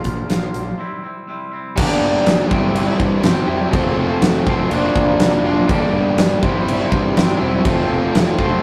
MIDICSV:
0, 0, Header, 1, 6, 480
1, 0, Start_track
1, 0, Tempo, 491400
1, 1724, Time_signature, 4, 2, 24, 8
1, 8426, End_track
2, 0, Start_track
2, 0, Title_t, "Distorted electric guitar"
2, 0, Program_c, 0, 30
2, 3393, Note_on_c, 0, 67, 84
2, 3406, Note_on_c, 0, 64, 77
2, 3416, Note_on_c, 0, 60, 74
2, 3429, Note_on_c, 0, 55, 77
2, 3624, Note_off_c, 0, 67, 0
2, 3630, Note_off_c, 0, 64, 0
2, 3631, Note_off_c, 0, 55, 0
2, 3635, Note_off_c, 0, 60, 0
2, 7213, Note_on_c, 0, 67, 89
2, 7229, Note_on_c, 0, 64, 74
2, 7242, Note_on_c, 0, 60, 83
2, 7251, Note_on_c, 0, 55, 72
2, 7450, Note_off_c, 0, 67, 0
2, 7457, Note_off_c, 0, 55, 0
2, 7458, Note_off_c, 0, 64, 0
2, 7465, Note_off_c, 0, 60, 0
2, 8426, End_track
3, 0, Start_track
3, 0, Title_t, "Overdriven electric guitar"
3, 0, Program_c, 1, 29
3, 1720, Note_on_c, 1, 55, 87
3, 1729, Note_on_c, 1, 58, 91
3, 1739, Note_on_c, 1, 62, 111
3, 1747, Note_on_c, 1, 67, 115
3, 2420, Note_off_c, 1, 55, 0
3, 2432, Note_on_c, 1, 55, 105
3, 2433, Note_off_c, 1, 58, 0
3, 2438, Note_off_c, 1, 62, 0
3, 2439, Note_on_c, 1, 60, 102
3, 2442, Note_off_c, 1, 67, 0
3, 2449, Note_on_c, 1, 64, 104
3, 2455, Note_on_c, 1, 67, 109
3, 3135, Note_off_c, 1, 55, 0
3, 3147, Note_off_c, 1, 60, 0
3, 3147, Note_on_c, 1, 55, 72
3, 3152, Note_off_c, 1, 64, 0
3, 3155, Note_off_c, 1, 67, 0
3, 3159, Note_on_c, 1, 60, 84
3, 3163, Note_on_c, 1, 64, 73
3, 3175, Note_on_c, 1, 67, 81
3, 3620, Note_off_c, 1, 55, 0
3, 3624, Note_on_c, 1, 53, 97
3, 3626, Note_off_c, 1, 60, 0
3, 3629, Note_off_c, 1, 64, 0
3, 3632, Note_on_c, 1, 57, 99
3, 3635, Note_off_c, 1, 67, 0
3, 3643, Note_on_c, 1, 60, 97
3, 3646, Note_on_c, 1, 65, 101
3, 4338, Note_off_c, 1, 53, 0
3, 4342, Note_off_c, 1, 57, 0
3, 4347, Note_off_c, 1, 60, 0
3, 4347, Note_off_c, 1, 65, 0
3, 4358, Note_on_c, 1, 65, 93
3, 4364, Note_on_c, 1, 60, 81
3, 4376, Note_on_c, 1, 57, 89
3, 4377, Note_on_c, 1, 53, 78
3, 4585, Note_off_c, 1, 65, 0
3, 4586, Note_off_c, 1, 53, 0
3, 4588, Note_off_c, 1, 60, 0
3, 4594, Note_off_c, 1, 57, 0
3, 4598, Note_on_c, 1, 53, 96
3, 4604, Note_on_c, 1, 58, 86
3, 4607, Note_on_c, 1, 62, 97
3, 4617, Note_on_c, 1, 65, 88
3, 5303, Note_off_c, 1, 65, 0
3, 5304, Note_off_c, 1, 53, 0
3, 5307, Note_off_c, 1, 58, 0
3, 5309, Note_off_c, 1, 62, 0
3, 5314, Note_on_c, 1, 65, 90
3, 5323, Note_on_c, 1, 62, 81
3, 5334, Note_on_c, 1, 58, 71
3, 5340, Note_on_c, 1, 53, 76
3, 5543, Note_off_c, 1, 65, 0
3, 5547, Note_off_c, 1, 62, 0
3, 5553, Note_off_c, 1, 58, 0
3, 5555, Note_off_c, 1, 53, 0
3, 5563, Note_on_c, 1, 55, 90
3, 5572, Note_on_c, 1, 58, 92
3, 5579, Note_on_c, 1, 62, 110
3, 5588, Note_on_c, 1, 67, 103
3, 6266, Note_off_c, 1, 55, 0
3, 6270, Note_off_c, 1, 58, 0
3, 6274, Note_off_c, 1, 62, 0
3, 6278, Note_off_c, 1, 67, 0
3, 6279, Note_on_c, 1, 55, 93
3, 6285, Note_on_c, 1, 60, 116
3, 6292, Note_on_c, 1, 64, 98
3, 6298, Note_on_c, 1, 67, 117
3, 6969, Note_off_c, 1, 55, 0
3, 6978, Note_off_c, 1, 60, 0
3, 6981, Note_off_c, 1, 64, 0
3, 6981, Note_on_c, 1, 55, 82
3, 6987, Note_off_c, 1, 67, 0
3, 6989, Note_on_c, 1, 60, 80
3, 6993, Note_on_c, 1, 64, 79
3, 6998, Note_on_c, 1, 67, 88
3, 7454, Note_off_c, 1, 55, 0
3, 7458, Note_off_c, 1, 60, 0
3, 7460, Note_off_c, 1, 64, 0
3, 7463, Note_off_c, 1, 67, 0
3, 7478, Note_on_c, 1, 53, 92
3, 7483, Note_on_c, 1, 57, 96
3, 7488, Note_on_c, 1, 60, 103
3, 7495, Note_on_c, 1, 65, 104
3, 8178, Note_off_c, 1, 65, 0
3, 8182, Note_off_c, 1, 53, 0
3, 8185, Note_off_c, 1, 57, 0
3, 8188, Note_off_c, 1, 60, 0
3, 8190, Note_on_c, 1, 65, 98
3, 8199, Note_on_c, 1, 60, 86
3, 8206, Note_on_c, 1, 57, 81
3, 8214, Note_on_c, 1, 53, 72
3, 8415, Note_off_c, 1, 53, 0
3, 8418, Note_off_c, 1, 65, 0
3, 8423, Note_off_c, 1, 60, 0
3, 8426, Note_off_c, 1, 57, 0
3, 8426, End_track
4, 0, Start_track
4, 0, Title_t, "Clean electric guitar"
4, 0, Program_c, 2, 27
4, 0, Note_on_c, 2, 46, 70
4, 0, Note_on_c, 2, 50, 75
4, 37, Note_on_c, 2, 65, 60
4, 49, Note_on_c, 2, 58, 59
4, 63, Note_on_c, 2, 53, 47
4, 259, Note_off_c, 2, 50, 0
4, 271, Note_on_c, 2, 50, 64
4, 274, Note_off_c, 2, 53, 0
4, 277, Note_off_c, 2, 46, 0
4, 282, Note_off_c, 2, 58, 0
4, 285, Note_off_c, 2, 65, 0
4, 286, Note_on_c, 2, 53, 71
4, 294, Note_on_c, 2, 58, 71
4, 297, Note_on_c, 2, 65, 72
4, 743, Note_off_c, 2, 50, 0
4, 750, Note_off_c, 2, 53, 0
4, 754, Note_off_c, 2, 58, 0
4, 756, Note_off_c, 2, 65, 0
4, 757, Note_on_c, 2, 48, 74
4, 769, Note_on_c, 2, 55, 78
4, 775, Note_on_c, 2, 60, 74
4, 785, Note_on_c, 2, 64, 87
4, 984, Note_off_c, 2, 64, 0
4, 996, Note_on_c, 2, 64, 61
4, 1002, Note_off_c, 2, 60, 0
4, 1014, Note_on_c, 2, 60, 59
4, 1016, Note_off_c, 2, 55, 0
4, 1028, Note_on_c, 2, 55, 52
4, 1233, Note_off_c, 2, 48, 0
4, 1245, Note_on_c, 2, 48, 80
4, 1246, Note_off_c, 2, 55, 0
4, 1254, Note_off_c, 2, 60, 0
4, 1258, Note_on_c, 2, 55, 84
4, 1260, Note_off_c, 2, 64, 0
4, 1266, Note_on_c, 2, 60, 85
4, 1272, Note_on_c, 2, 64, 82
4, 1469, Note_off_c, 2, 64, 0
4, 1481, Note_on_c, 2, 64, 62
4, 1482, Note_off_c, 2, 60, 0
4, 1494, Note_on_c, 2, 60, 57
4, 1496, Note_off_c, 2, 55, 0
4, 1507, Note_on_c, 2, 55, 51
4, 1708, Note_off_c, 2, 64, 0
4, 1711, Note_off_c, 2, 48, 0
4, 1715, Note_off_c, 2, 60, 0
4, 1722, Note_off_c, 2, 55, 0
4, 8426, End_track
5, 0, Start_track
5, 0, Title_t, "Picked electric bass"
5, 0, Program_c, 3, 34
5, 55, Note_on_c, 3, 34, 74
5, 220, Note_off_c, 3, 34, 0
5, 292, Note_on_c, 3, 34, 76
5, 458, Note_off_c, 3, 34, 0
5, 528, Note_on_c, 3, 34, 79
5, 696, Note_off_c, 3, 34, 0
5, 1739, Note_on_c, 3, 31, 86
5, 1909, Note_off_c, 3, 31, 0
5, 1965, Note_on_c, 3, 31, 87
5, 2140, Note_off_c, 3, 31, 0
5, 2204, Note_on_c, 3, 31, 87
5, 2379, Note_off_c, 3, 31, 0
5, 2457, Note_on_c, 3, 31, 96
5, 2628, Note_off_c, 3, 31, 0
5, 2671, Note_on_c, 3, 31, 97
5, 2851, Note_off_c, 3, 31, 0
5, 2927, Note_on_c, 3, 43, 96
5, 3101, Note_off_c, 3, 43, 0
5, 3158, Note_on_c, 3, 31, 91
5, 3335, Note_off_c, 3, 31, 0
5, 3393, Note_on_c, 3, 41, 91
5, 3572, Note_off_c, 3, 41, 0
5, 3645, Note_on_c, 3, 29, 89
5, 3819, Note_off_c, 3, 29, 0
5, 3879, Note_on_c, 3, 29, 89
5, 4055, Note_off_c, 3, 29, 0
5, 4118, Note_on_c, 3, 29, 93
5, 4294, Note_off_c, 3, 29, 0
5, 4363, Note_on_c, 3, 29, 98
5, 4537, Note_off_c, 3, 29, 0
5, 4586, Note_on_c, 3, 29, 98
5, 4766, Note_off_c, 3, 29, 0
5, 4842, Note_on_c, 3, 29, 89
5, 5017, Note_off_c, 3, 29, 0
5, 5072, Note_on_c, 3, 29, 102
5, 5250, Note_off_c, 3, 29, 0
5, 5289, Note_on_c, 3, 29, 99
5, 5475, Note_off_c, 3, 29, 0
5, 5563, Note_on_c, 3, 31, 98
5, 5736, Note_off_c, 3, 31, 0
5, 5782, Note_on_c, 3, 31, 98
5, 5963, Note_off_c, 3, 31, 0
5, 6013, Note_on_c, 3, 31, 93
5, 6197, Note_off_c, 3, 31, 0
5, 6286, Note_on_c, 3, 31, 98
5, 6458, Note_off_c, 3, 31, 0
5, 6509, Note_on_c, 3, 31, 93
5, 6687, Note_off_c, 3, 31, 0
5, 6754, Note_on_c, 3, 43, 94
5, 6930, Note_off_c, 3, 43, 0
5, 7000, Note_on_c, 3, 31, 95
5, 7174, Note_off_c, 3, 31, 0
5, 7238, Note_on_c, 3, 28, 99
5, 7412, Note_off_c, 3, 28, 0
5, 7476, Note_on_c, 3, 29, 91
5, 7651, Note_off_c, 3, 29, 0
5, 7726, Note_on_c, 3, 29, 86
5, 7897, Note_off_c, 3, 29, 0
5, 7965, Note_on_c, 3, 29, 92
5, 8137, Note_off_c, 3, 29, 0
5, 8194, Note_on_c, 3, 29, 92
5, 8369, Note_off_c, 3, 29, 0
5, 8426, End_track
6, 0, Start_track
6, 0, Title_t, "Drums"
6, 42, Note_on_c, 9, 42, 56
6, 50, Note_on_c, 9, 36, 63
6, 140, Note_off_c, 9, 42, 0
6, 147, Note_off_c, 9, 36, 0
6, 290, Note_on_c, 9, 42, 80
6, 296, Note_on_c, 9, 38, 95
6, 387, Note_off_c, 9, 42, 0
6, 393, Note_off_c, 9, 38, 0
6, 530, Note_on_c, 9, 42, 58
6, 627, Note_off_c, 9, 42, 0
6, 1732, Note_on_c, 9, 49, 123
6, 1732, Note_on_c, 9, 57, 63
6, 1736, Note_on_c, 9, 36, 115
6, 1829, Note_off_c, 9, 49, 0
6, 1829, Note_off_c, 9, 57, 0
6, 1833, Note_off_c, 9, 36, 0
6, 2211, Note_on_c, 9, 57, 65
6, 2217, Note_on_c, 9, 38, 110
6, 2309, Note_off_c, 9, 57, 0
6, 2315, Note_off_c, 9, 38, 0
6, 2453, Note_on_c, 9, 36, 106
6, 2551, Note_off_c, 9, 36, 0
6, 2691, Note_on_c, 9, 57, 69
6, 2789, Note_off_c, 9, 57, 0
6, 2929, Note_on_c, 9, 36, 95
6, 3026, Note_off_c, 9, 36, 0
6, 3158, Note_on_c, 9, 57, 62
6, 3164, Note_on_c, 9, 38, 119
6, 3256, Note_off_c, 9, 57, 0
6, 3262, Note_off_c, 9, 38, 0
6, 3647, Note_on_c, 9, 36, 114
6, 3647, Note_on_c, 9, 57, 68
6, 3744, Note_off_c, 9, 36, 0
6, 3745, Note_off_c, 9, 57, 0
6, 4121, Note_on_c, 9, 57, 70
6, 4127, Note_on_c, 9, 38, 116
6, 4219, Note_off_c, 9, 57, 0
6, 4224, Note_off_c, 9, 38, 0
6, 4363, Note_on_c, 9, 36, 92
6, 4461, Note_off_c, 9, 36, 0
6, 4601, Note_on_c, 9, 57, 68
6, 4698, Note_off_c, 9, 57, 0
6, 4841, Note_on_c, 9, 36, 100
6, 4939, Note_off_c, 9, 36, 0
6, 5076, Note_on_c, 9, 57, 66
6, 5082, Note_on_c, 9, 38, 122
6, 5173, Note_off_c, 9, 57, 0
6, 5179, Note_off_c, 9, 38, 0
6, 5561, Note_on_c, 9, 36, 120
6, 5562, Note_on_c, 9, 57, 62
6, 5658, Note_off_c, 9, 36, 0
6, 5660, Note_off_c, 9, 57, 0
6, 6036, Note_on_c, 9, 57, 62
6, 6042, Note_on_c, 9, 38, 114
6, 6134, Note_off_c, 9, 57, 0
6, 6139, Note_off_c, 9, 38, 0
6, 6279, Note_on_c, 9, 36, 102
6, 6377, Note_off_c, 9, 36, 0
6, 6528, Note_on_c, 9, 57, 67
6, 6625, Note_off_c, 9, 57, 0
6, 6759, Note_on_c, 9, 36, 98
6, 6857, Note_off_c, 9, 36, 0
6, 7003, Note_on_c, 9, 57, 66
6, 7009, Note_on_c, 9, 38, 117
6, 7100, Note_off_c, 9, 57, 0
6, 7106, Note_off_c, 9, 38, 0
6, 7474, Note_on_c, 9, 36, 115
6, 7476, Note_on_c, 9, 57, 65
6, 7572, Note_off_c, 9, 36, 0
6, 7574, Note_off_c, 9, 57, 0
6, 7960, Note_on_c, 9, 57, 67
6, 7966, Note_on_c, 9, 38, 112
6, 8058, Note_off_c, 9, 57, 0
6, 8063, Note_off_c, 9, 38, 0
6, 8191, Note_on_c, 9, 36, 87
6, 8289, Note_off_c, 9, 36, 0
6, 8426, End_track
0, 0, End_of_file